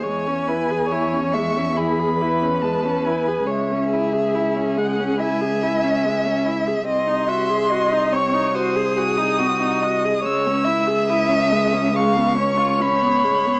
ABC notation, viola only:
X:1
M:4/4
L:1/16
Q:1/4=71
K:C#m
V:1 name="Viola"
G, C E G E C G, C E G E C G, C E G | G, C E G E C G, C E G E C G, C E G | ^B, D F G F D B, D F G F D B, D F G | G, C E G E C G, C G, B, C ^E C B, G, B, |]